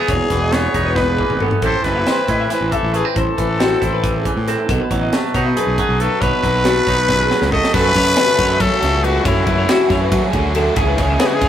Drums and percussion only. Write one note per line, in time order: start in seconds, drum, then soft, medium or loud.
0.08 kick medium
0.08 closed hi-hat medium
0.30 kick medium
0.30 snare soft
0.30 closed hi-hat medium
0.52 snare medium
0.52 closed hi-hat medium
0.74 kick medium
0.74 closed hi-hat medium
0.96 kick medium
0.96 snare medium
1.18 kick medium
1.30 mid tom medium
1.40 floor tom medium
1.51 floor tom medium
1.62 kick medium
1.62 closed hi-hat medium
1.84 kick medium
1.84 snare soft
1.84 closed hi-hat medium
2.06 snare medium
2.06 closed hi-hat medium
2.28 kick medium
2.28 closed hi-hat medium
2.50 snare soft
2.50 closed hi-hat medium
2.72 kick medium
2.72 closed hi-hat medium
2.94 closed hi-hat medium
3.16 kick loud
3.16 closed hi-hat medium
3.38 kick medium
3.38 closed hi-hat medium
3.60 snare loud
3.60 closed hi-hat medium
3.82 kick medium
3.82 closed hi-hat medium
4.04 kick loud
4.04 closed hi-hat medium
4.25 kick medium
4.25 closed hi-hat medium
4.48 snare soft
4.48 closed hi-hat medium
4.69 kick loud
4.69 closed hi-hat medium
4.91 kick medium
4.91 closed hi-hat medium
5.13 snare loud
5.13 closed hi-hat medium
5.34 kick medium
5.34 closed hi-hat medium
5.57 closed hi-hat medium
5.78 kick medium
5.78 closed hi-hat medium
6.00 closed hi-hat medium
6.22 kick loud
6.22 closed hi-hat medium
6.43 kick medium
6.43 snare soft
6.43 closed hi-hat medium
6.65 snare loud
6.65 closed hi-hat medium
6.87 kick medium
6.87 closed hi-hat medium
7.09 kick loud
7.09 snare medium
7.31 snare medium
7.42 snare medium
7.52 kick medium
7.64 snare medium
7.74 kick loud
7.74 crash loud
7.95 kick medium
7.95 ride medium
8.17 snare loud
8.17 ride loud
8.39 kick medium
8.39 ride medium
8.60 kick loud
8.60 ride loud
8.83 snare soft
8.83 ride medium
9.04 ride medium
9.25 kick loud
9.25 ride loud
9.47 kick medium
9.47 ride medium
9.69 snare loud
9.69 ride loud
9.90 kick medium
9.90 snare soft
9.90 ride medium
10.12 kick loud
10.12 ride loud
10.33 kick medium
10.33 ride medium
10.55 ride medium
10.76 kick loud
10.76 ride loud
10.98 kick medium
10.98 snare soft
10.98 ride medium
11.20 snare loud
11.20 ride loud
11.42 kick medium
11.42 snare soft
11.42 ride medium